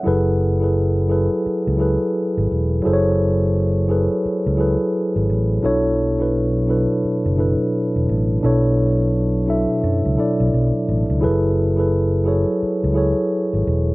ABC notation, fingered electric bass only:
X:1
M:4/4
L:1/16
Q:"Swing 16ths" 1/4=86
K:F#m
V:1 name="Fingered electric bass" clef=bass
F,,,6- F,,, z2 C,,2 z2 G,,, E,,,2 | F,,,6- F,,, z2 C,,2 z2 G,,, A,,,2 | B,,,6- B,,, z2 F,,,2 z2 E,,, A,,,2 | B,,,6- B,,, z F,, C,, z B,,, B,,, z A,,, C,, |
F,,,6- F,,, z2 C,,2 z2 G,,, E,,,2 |]